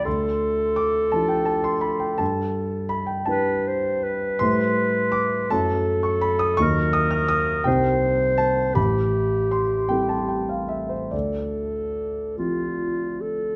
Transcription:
0.05 D2 A4 C6
0.76 D6
1.12 F3 D4 E4 G4 A5
1.28 G5
1.45 A5
1.64 C6
1.81 B5
2.00 G5
2.18 G2 A5
2.89 B5
3.06 G5
3.25 G3 D4 E4 B4 A5
3.30 B4
3.67 C5
4.03 B4
4.39 A2 G3 A3 E4 C5 C6
5.12 D6
5.50 F#2 F#3 A3 E4 A4 C#5 A5
6.03 C#6
6.21 B5
6.39 D#6
6.57 D#2 F#3 A#3 D#4 D#5 C#6
6.62 A#4
6.93 D#6
7.11 F6
7.28 D#6
7.64 C2 G3 C4 D#4 A#4 C5 G5
8.38 A5
8.74 A1 G4 B5
9.51 C6
9.89 G3 C4 E4 A4 G5
10.09 A5
10.28 G5
10.49 F5
10.68 E5
10.89 C5
11.11 D2 A4 D5
12.38 F3 C4 E4 F4 G4
13.21 A4

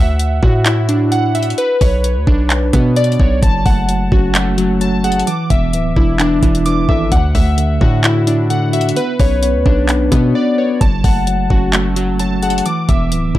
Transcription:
Already playing: D2 E5 F#5
0.20 closed hi-hat
0.43 A2 F#4, kick
0.66 E4, clap, closed hi-hat
0.89 D4, closed hi-hat
1.12 F#5, closed hi-hat
1.35 E5, closed hi-hat
1.43 closed hi-hat
1.50 closed hi-hat
1.58 B4, closed hi-hat
1.81 B1 C#5, kick, open hi-hat
2.04 closed hi-hat
2.16 D2
2.27 B1 D4, kick
2.50 clap, closed hi-hat
2.73 B2 B3, kick, closed hi-hat
2.96 D5, closed hi-hat
3.04 closed hi-hat
3.12 closed hi-hat
3.20 B1 C#5, kick
3.42 F#1 F#3 A5, kick, closed hi-hat
3.66 F#1 A3 F#5, kick, open hi-hat
3.89 F#3, closed hi-hat
4.12 F#1 C#4 F#4, kick
4.35 F#3 A3, clap, closed hi-hat
4.58 F#3 F#4, closed hi-hat
4.81 F#3 A5, closed hi-hat
5.04 G#4 F#5, closed hi-hat
5.12 closed hi-hat
5.20 closed hi-hat
5.27 E3 D6, closed hi-hat
5.50 E1 B3 E5, kick, closed hi-hat
5.73 D1 E3, closed hi-hat
5.96 E1 D4 E4, kick
6.19 E3 D4, clap, closed hi-hat
6.43 E1 E3 E4, kick, closed hi-hat
6.55 closed hi-hat
6.66 E3 D6, closed hi-hat
6.89 G#1 A4 E5, kick
7.11 D2 D3 F#5, kick, closed hi-hat
7.35 D2 A3 E5, kick, open hi-hat
7.57 D3, closed hi-hat
7.81 A2 D4 F#4, kick
8.04 D3 E4, clap, closed hi-hat
8.27 D4 E4, closed hi-hat
8.50 D3 F#5, closed hi-hat
8.73 F#4 E5, closed hi-hat
8.81 closed hi-hat
8.89 closed hi-hat
8.96 B3 B4, closed hi-hat
9.19 B1 C#4 C#5, kick, open hi-hat
9.42 B3, closed hi-hat
9.55 D2
9.66 B1 D4, kick
9.89 B3, clap, closed hi-hat
10.12 B2 B3 F#4, kick, closed hi-hat
10.35 B3 D5
10.58 B4 C#5
10.80 F#1 F#3 A5, kick, closed hi-hat
11.04 F#1 A3 F#5, kick, open hi-hat
11.27 F#3, closed hi-hat
11.50 F#1 C#4 F#4, kick
11.73 F#3 A3, clap, closed hi-hat
11.96 F#3 F#4, closed hi-hat
12.19 F#3 A5, closed hi-hat
12.42 G#4 F#5, closed hi-hat
12.50 closed hi-hat
12.58 closed hi-hat
12.66 E3 D6, closed hi-hat
12.89 E1 B3 E5, kick, closed hi-hat
13.12 D1 E3, closed hi-hat
13.35 E1 D4 E4, kick

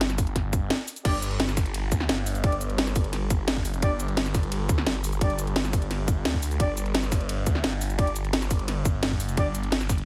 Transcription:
Already playing: G1
0.01 snare, closed hi-hat
0.10 snare, shaker
0.18 kick, open hi-hat, shaker
0.27 closed hi-hat
0.36 kick, snare, closed hi-hat
0.53 kick, closed hi-hat, shaker
0.70 snare, closed hi-hat
0.88 open hi-hat, shaker
0.96 closed hi-hat, shaker
1.05 G1 D4 G4 D5, kick, closed hi-hat, crash, ride
1.22 closed hi-hat, shaker
1.31 closed hi-hat
1.40 snare, closed hi-hat, ride
1.48 snare, shaker
1.57 kick, snare, open hi-hat, shaker
1.66 closed hi-hat
1.74 closed hi-hat, ride
1.92 D2, kick, closed hi-hat, shaker
2.00 snare
2.09 G1, snare, closed hi-hat, ride
2.18 snare
2.26 open hi-hat, shaker
2.35 closed hi-hat, shaker
2.44 D4 G4 D5, kick, closed hi-hat, ride
2.52 closed hi-hat
2.61 closed hi-hat, shaker
2.70 closed hi-hat
2.78 snare, closed hi-hat, ride
2.87 snare, shaker
2.96 kick, open hi-hat, shaker
3.04 closed hi-hat
3.13 snare, closed hi-hat, ride
3.30 kick, closed hi-hat, shaker
3.48 G1, snare, closed hi-hat, ride
3.56 kick
3.65 open hi-hat, shaker
3.74 closed hi-hat, shaker
3.82 G1 D4 G4 D5, kick, closed hi-hat, ride
4.00 closed hi-hat, shaker
4.08 closed hi-hat
4.17 snare, closed hi-hat, ride
4.26 snare, shaker
4.34 kick, snare, open hi-hat, shaker
4.43 closed hi-hat
4.52 closed hi-hat, ride
4.69 D2, kick, closed hi-hat, shaker
4.78 snare
4.87 G1, snare, closed hi-hat, ride
4.95 snare
5.04 open hi-hat, shaker
5.13 closed hi-hat, shaker
5.21 D4 G4 D5, kick, closed hi-hat, ride
5.30 closed hi-hat
5.39 closed hi-hat, shaker
5.47 closed hi-hat
5.56 snare, closed hi-hat, ride
5.65 snare, shaker
5.73 kick, open hi-hat, shaker
5.82 closed hi-hat
5.91 snare, closed hi-hat, ride
6.08 kick, closed hi-hat, shaker
6.25 D2, snare, closed hi-hat, ride
6.34 kick
6.43 open hi-hat, shaker
6.51 closed hi-hat, shaker
6.60 G1 D4 G4 D5, kick, closed hi-hat, ride
6.77 closed hi-hat, shaker
6.86 closed hi-hat
6.95 snare, closed hi-hat, ride
7.03 snare, shaker
7.12 kick, snare, open hi-hat, shaker
7.21 closed hi-hat
7.29 closed hi-hat, ride
7.47 D2, kick, closed hi-hat, shaker
7.55 snare
7.64 G1, snare, closed hi-hat, ride
7.73 snare
7.81 open hi-hat, shaker
7.90 closed hi-hat, shaker
7.99 D4 G4 D5, kick, closed hi-hat, ride
8.07 closed hi-hat
8.16 closed hi-hat, shaker
8.25 closed hi-hat
8.33 snare, closed hi-hat, ride
8.42 snare, shaker
8.51 kick, open hi-hat, shaker
8.59 closed hi-hat
8.68 snare, closed hi-hat, ride
8.85 kick, closed hi-hat, shaker
9.03 G1, snare, closed hi-hat, ride
9.11 kick
9.20 open hi-hat, shaker
9.29 closed hi-hat, shaker
9.37 G1 D4 G4 D5, kick, closed hi-hat, ride
9.55 closed hi-hat, shaker
9.63 closed hi-hat
9.72 snare, closed hi-hat, ride
9.81 snare, shaker
9.89 kick, snare, open hi-hat, shaker
9.98 closed hi-hat

